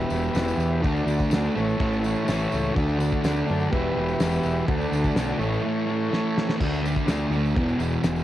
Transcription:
Already playing: E2 B2 G4 B4 E5
0.10 E1 E3, tambourine
0.15 B2
0.23 tambourine
0.34 E1 E2 B2, snare, tambourine, crash
0.39 E3
0.48 tambourine
0.57 E2, tambourine
0.81 D2 D3 A3 F#4 A4 D5, kick, tambourine, crash
0.87 D4
0.97 tambourine
1.06 D2 D4, tambourine
1.11 A3
1.20 kick, tambourine
1.30 D2 D3 A3, snare, tambourine, crash
1.35 D4
1.45 tambourine
1.55 A1 E3 A3 E4 A4 C#5, tambourine
1.60 A2
1.69 tambourine
1.78 A1 A2 E3, kick, crash
1.82 A3
1.93 tambourine
2.02 A3, tambourine
2.07 E3
2.16 tambourine
2.26 A1 A2 E3, snare, tambourine, crash
2.31 A3
2.40 tambourine
2.52 C#2, tambourine
2.73 D2 D3 A3 F#4 A4 D5, kick, tambourine, crash
2.79 D4
2.89 tambourine
2.99 D4, tambourine
3.03 A3
3.12 kick, tambourine
3.22 D2 D3 A3, snare, tambourine, crash
3.27 D4
3.46 F#2 D4, tambourine
3.51 A3
3.60 tambourine
3.70 E1 E2 G4 B4 E5, kick, crash
3.74 B2 E3
3.95 E1 E3
4.00 B2
4.08 tambourine
4.20 E1 E2 B2, snare, tambourine, crash
4.24 E3
4.32 tambourine
4.43 E1, tambourine
4.67 D2 D3 A3 F#4 A4 D5, kick, tambourine, crash
4.71 D4
4.81 tambourine
4.91 D2 D4, tambourine
4.96 A3
5.04 kick, tambourine
5.15 B1 D3 A3, snare, tambourine, crash
5.20 D4
5.30 tambourine
5.36 A1 A3 E4 A4 C#5
5.41 A2 E3, tambourine
5.53 tambourine
5.63 A2 E3
5.67 A3
5.86 A3
5.91 E3
6.10 A2 E3, snare
6.15 A3
6.38 snare
6.49 snare
6.59 D2 D3 A3, kick, crash, tambourine
6.64 D4
6.74 tambourine
6.82 D4, tambourine
6.87 A3
6.97 kick, tambourine
7.07 D2 D3 A3, snare, tambourine, crash
7.12 D4
7.30 D2 D4, tambourine
7.37 A3
7.46 tambourine
7.55 E1 E2 B2, kick, crash
7.59 E3
7.69 tambourine
7.79 E1 E3, tambourine
7.83 B2
7.93 tambourine
8.02 E1 E2 B2, snare, tambourine, crash
8.07 E3
8.16 tambourine

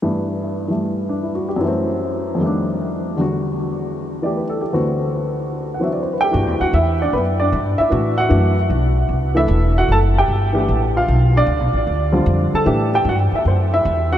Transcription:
0.03 G2 E3 A3 B3
0.68 E3 G3 A3
1.09 D4
1.23 E4
1.35 F#4
1.49 G4
1.56 F#2
1.61 E3 A3
1.68 C4
2.35 F2 D#3
2.41 G3 A3
2.46 D4
3.16 E2 D3 G3
3.21 F#4
4.22 E3 A3 G4 D5
4.37 B4
4.49 A4
4.61 G4
4.73 D2 D3 E3 B3 C4 F#4
5.74 F#5
5.80 E3 F#3 C4 D4 F#4 E5
5.93 D5
6.03 C5
6.13 B4
6.21 G4 A4 G5
6.31 G2 E3 A3 D4 F#4
6.47 E2
6.60 D2 F#4 F#5
6.73 E2 E4 E5
7.02 D4 D5
7.13 F#2 B3 B4
7.40 D4 D5
7.52 G2
7.78 E4 E5, muted upright bass stroke
7.90 A2 E3 A3 D4 F#4
8.18 F#4 F#5
8.29 F#2 E3 A3 D4 F#4
8.70 B1
9.09 C2
9.35 E3 A3 D4 E4 A4 E5
9.48 E1
9.78 F#4 F#5
9.88 F#1 A4 A5
10.18 G4 G5
10.28 G1
10.53 E3 A3 D4 G4
10.68 A1
10.96 F4 F5
11.08 B1
11.37 D4 D5
11.47 C#2
11.60 B1
11.73 A1
11.87 D2
12.12 D3 G3 C4 F4
12.26 F2
12.53 A4 A5, muted upright bass stroke
12.66 A2 E3 A3 D4 G4
12.94 G4 G5
13.05 G2
13.09 F#4 F#5
13.32 E4 E5, muted upright bass stroke
13.45 F#2 C4 C5
13.74 E4 E5
13.85 E2
14.12 F#4 F#5

